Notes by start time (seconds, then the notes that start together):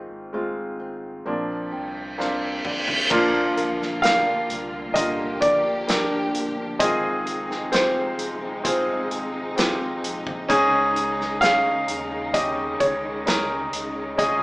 Already playing: G#2 D#3 G#3 C4 F4
0.11 G#1
0.33 G#3 C4 F4
0.80 C4
1.25 A#1 A#2 F3 A#3 C4 D4, reverse cymbal
1.72 C2 C4 G5
2.18 A#3 C4 D4 F4 F5, snare
2.65 C4 D5, mid tom
2.88 floor tom
3.10 A#1 A#2 D3 F3 A#3 D4 F4 A#4, kick, crash, impact
3.34 A#3
3.57 A#4, closed hi-hat
3.80 D4, snare
4.02 A#3 D4 G4 A#4 F5, snare, closed hi-hat
4.27 D4
4.49 C2 A#3, closed hi-hat
4.94 A#2 D3 A#3 F4 G4 A#4 D#5, kick, closed hi-hat
5.19 A#3
5.41 A#1 A#4 D5, kick, closed hi-hat
5.65 D4
5.87 A#3 D4 G4 A#4, snare, closed hi-hat
6.11 D4
6.34 G1 A#3, closed hi-hat
6.57 D4
6.79 G#1 G#2 C3 D#3 G#3 C4 D#4 F4 G#4 D#5, kick, closed hi-hat
7.03 G#3
7.26 G#4, closed hi-hat
7.49 C4, snare
7.71 C4 F4 G4 G#4 C5, snare, closed hi-hat
7.95 C4
8.18 G1 G#3, closed hi-hat
8.41 C4
8.64 C4 F4 G#4 C5, kick, closed hi-hat
8.88 G#3
9.11 G#1 G#4, closed hi-hat
9.34 C4
9.56 C4 F4 G4 G#4, snare, closed hi-hat
9.80 C4
10.03 A#1 G#3, closed hi-hat
10.26 C4, kick
10.48 C#2 G#2 C#3 D#3 G#3 C#4 D#4 G#4, kick, closed hi-hat
10.72 C#4
10.96 G#4, closed hi-hat
11.19 D#4, snare
11.41 C#4 D#4 G#4 F5, snare, closed hi-hat
11.65 D#4
11.88 D#2 C#4, closed hi-hat
12.11 D#4
12.33 C#3 C#4 D#4 G4 G#4 D#5, kick, closed hi-hat
12.57 C#4
12.80 C#2 G#4 C#5, kick, closed hi-hat
13.04 D#4
13.26 C#4 D#4 G#4 A#4, snare, closed hi-hat
13.50 D#4
13.72 C#2 C#4, closed hi-hat
13.95 D#4
14.17 C#2 G#2 C#3 C#4 D#4 F4 G#4 D#5, kick, closed hi-hat